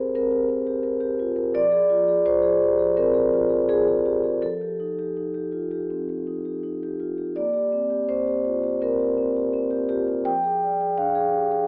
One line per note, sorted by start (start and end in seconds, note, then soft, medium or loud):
0.00 0.15 C4 medium
0.00 0.32 G4 soft
0.00 1.58 G#4 soft
0.00 0.15 A#4 medium
0.00 0.14 C5 medium
0.15 1.53 C4 soft
0.15 0.48 A#4 medium
0.32 0.60 G4 soft
0.49 0.78 A#4 soft
0.67 0.96 G4 soft
0.83 1.13 A#4 soft
1.00 1.30 G4 soft
1.19 1.38 F4 soft
1.36 1.55 A#4 soft
1.54 2.93 F3 medium
1.54 2.26 D5 medium
1.72 2.01 G#4 soft
1.90 2.19 F4 soft
2.08 2.37 G#4 soft
2.25 2.55 F4 soft
2.25 2.98 C5 medium
2.42 2.72 G#4 soft
2.62 2.80 G4 soft
2.79 3.08 G#4 soft
2.97 3.26 C4 soft
2.97 3.69 A#4 medium
3.14 3.44 G#4 soft
3.33 3.62 F4 soft
3.50 3.68 G#4 soft
3.69 3.98 F4 soft
3.69 3.87 G#4 medium
3.88 4.17 G#4 soft
4.06 4.24 G4 soft
4.24 4.42 G#4 soft
4.42 5.86 F3 medium
4.42 7.01 A4 medium
4.61 4.91 G4 soft
4.80 5.09 D#4 soft
4.99 5.28 G4 soft
5.17 5.46 D#4 soft
5.34 5.64 G4 soft
5.52 5.71 F4 soft
5.71 6.01 G4 soft
5.90 6.20 C4 soft
6.09 6.38 G4 soft
6.27 6.57 D#4 soft
6.45 6.75 G4 soft
6.63 6.93 D#4 soft
6.83 7.12 G4 soft
7.00 7.19 F4 soft
7.18 7.37 G4 soft
7.36 8.77 A#3 medium
7.36 8.09 D5 medium
7.53 7.84 G4 soft
7.72 8.02 C4 soft
7.90 8.20 G4 soft
8.09 8.38 C4 soft
8.09 8.81 C5 medium
8.27 8.56 G4 soft
8.45 8.63 F4 soft
8.63 8.92 G4 soft
8.81 9.10 C4 soft
8.81 9.90 A#4 medium
8.99 9.28 G4 soft
9.17 9.46 C4 soft
9.36 9.65 G4 soft
9.53 9.83 C4 soft
9.71 9.88 G4 soft
9.89 10.08 F4 soft
9.89 10.06 G4 medium
10.08 10.27 G4 soft
10.25 11.65 F3 medium
10.25 10.98 G5 medium
10.44 10.73 G#4 soft
10.63 10.92 D5 soft
10.81 11.09 G#4 soft
10.98 11.27 D4 soft
10.98 11.68 F5 medium
11.15 11.44 G#4 soft
11.34 11.52 G4 soft
11.52 11.68 G#4 soft